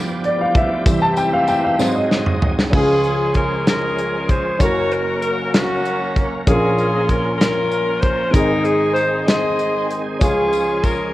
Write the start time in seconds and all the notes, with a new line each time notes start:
Already playing: G2 F3 B3 G4 D5 F5 G5
0.24 D5, closed hi-hat
0.41 F5
0.55 E5, kick, closed hi-hat
0.86 C3 E3 G3 C4 G4 E5, kick, closed hi-hat, tambourine
1.02 A5
1.17 G5, closed hi-hat, tambourine
1.33 F5
1.48 G5, closed hi-hat, tambourine
1.64 F5
1.79 G#2 F#3 C4 G#4 D#5, snare, tambourine
1.95 D#5
2.11 snare
2.26 mid tom
2.42 floor tom
2.59 snare
2.70 C#2 C#3 F3 G#3 C#4 F4 G#4, kick, crash
2.74 C#4 F4 G#4
3.04 closed hi-hat
3.35 A#4, kick, closed hi-hat
3.67 C#4 F4 A#4, snare, closed hi-hat
3.98 closed hi-hat
4.29 C5, kick, closed hi-hat
4.59 F#1 F#2 F#3 A#3 C#4 F#4 A#4 C#5, kick, closed hi-hat
4.63 A#4
4.92 A#4, closed hi-hat
5.22 A#4, closed hi-hat
5.54 A#3 C#4 F#4, snare, closed hi-hat
5.85 closed hi-hat
6.16 kick, closed hi-hat
6.46 A#1 A#2 F3 C#4 F4 G#4 A#4, kick, closed hi-hat
6.78 closed hi-hat
7.08 A#4, kick, closed hi-hat
7.38 C#4 F4 A#4, snare, closed hi-hat
7.72 closed hi-hat
8.00 C5, kick, closed hi-hat
8.31 G#1 G#2 C4 D#4 A#4, kick, closed hi-hat
8.35 D#3 G#3 C4 G#4
8.63 G#4, closed hi-hat
8.94 C5, closed hi-hat
9.26 G#4 C5 D#5, snare, closed hi-hat
9.59 closed hi-hat
9.91 closed hi-hat
10.19 C#2 C#3 F3 C#4 F4 G#4, kick, closed hi-hat, tambourine
10.23 C#4
10.53 closed hi-hat, tambourine
10.82 A#4, kick, closed hi-hat, tambourine